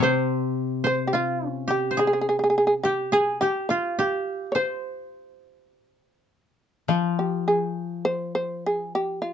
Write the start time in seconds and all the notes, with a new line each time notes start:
0.00 C3 C5
0.84 C5
1.07 G4
1.13 F4
1.49 C#4
1.68 G4
1.91 C5
1.97 G#4
2.07 G#4
2.13 G#4
2.21 G#4
2.29 G#4
2.39 G#4
2.44 G#4
2.50 G#4
2.58 G#4
2.67 G#4
2.83 G4
3.12 G#4
3.41 G4
3.69 F4
3.99 G4
4.52 C5 C#5
6.88 F3 F4
7.19 G4
7.48 G#4
8.05 C5
8.35 C5
8.66 G#4
8.95 G4
9.22 F4